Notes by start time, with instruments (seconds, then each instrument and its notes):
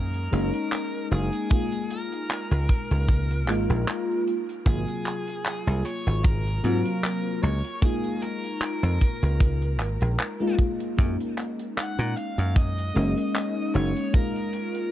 Already playing: slap bass F#2, fm electric piano G#3 A#3 C#4 D#4, lead electric guitar A#4
0.14 closed hi-hat
0.31 slap bass F#1, fm electric piano G#3 A#3 C#4 D#4, closed hi-hat
0.54 closed hi-hat
0.72 clap, closed hi-hat
1.11 slap bass F#1, lead electric guitar G#4, closed hi-hat
1.33 closed hi-hat
1.50 fm electric piano G#3 A#3 D#4 F4, lead electric guitar G#4, kick, closed hi-hat
1.72 closed hi-hat
1.90 lead electric guitar A#4, closed hi-hat
2.12 closed hi-hat
2.30 clap, closed hi-hat
2.51 slap bass C#2, closed hi-hat
2.69 kick, closed hi-hat
2.91 slap bass C#2, closed hi-hat
3.08 kick, closed hi-hat
3.31 closed hi-hat
3.48 slap bass G#1, fm electric piano G#3 A#3 D#4 F4, clap, closed hi-hat
3.70 slap bass A#1, closed hi-hat
3.88 clap, closed hi-hat
4.28 closed hi-hat
4.49 closed hi-hat
4.65 slap bass G#1, fm electric piano C3 F#3 A#3 F4, lead electric guitar G#4, kick, closed hi-hat
4.88 closed hi-hat
5.06 clap, closed hi-hat
5.28 closed hi-hat
5.45 clap, closed hi-hat
5.67 slap bass C2, closed hi-hat
5.85 lead electric guitar C#5, closed hi-hat
6.07 slap bass G#1, closed hi-hat
6.24 lead electric guitar A#4, kick, closed hi-hat
6.47 closed hi-hat
6.63 slap bass G#2, fm electric piano F#3 A#3 C4 F4, closed hi-hat
6.85 closed hi-hat
7.04 clap, closed hi-hat
7.43 slap bass C#2, lead electric guitar C#5, closed hi-hat
7.64 closed hi-hat
7.81 fm electric piano G#3 A#3 D#4 F4, lead electric guitar G#4, kick, closed hi-hat
8.04 closed hi-hat
8.22 lead electric guitar A#4, closed hi-hat
8.44 closed hi-hat
8.61 clap, closed hi-hat
8.83 slap bass F2, closed hi-hat
9.01 kick, closed hi-hat
9.23 slap bass C#2, closed hi-hat
9.40 kick, closed hi-hat
9.62 closed hi-hat
9.80 slap bass G#1, clap, closed hi-hat
10.01 slap bass A#1, closed hi-hat
10.19 clap, closed hi-hat
10.40 fm electric piano G#3 A#3 D#4 F4
10.59 kick, closed hi-hat
10.80 closed hi-hat
10.97 slap bass F#2, fm electric piano G#3 A#3 C#4 D#4, kick, closed hi-hat
11.20 closed hi-hat
11.38 clap, closed hi-hat
11.59 closed hi-hat
11.77 lead electric guitar F#5, clap, closed hi-hat
11.99 slap bass A#2, closed hi-hat
12.17 lead electric guitar F5, closed hi-hat
12.38 slap bass F#2, closed hi-hat
12.56 lead electric guitar D#5, kick, closed hi-hat
12.78 closed hi-hat
12.94 slap bass F#1, fm electric piano G#3 A#3 C#4 D#4, closed hi-hat
13.17 closed hi-hat
13.35 clap, closed hi-hat
13.75 slap bass F#1, lead electric guitar C#5, closed hi-hat
13.97 closed hi-hat
14.13 fm electric piano G#3 A#3 D#4 F4, lead electric guitar A#4, kick, closed hi-hat
14.36 closed hi-hat
14.53 closed hi-hat
14.75 closed hi-hat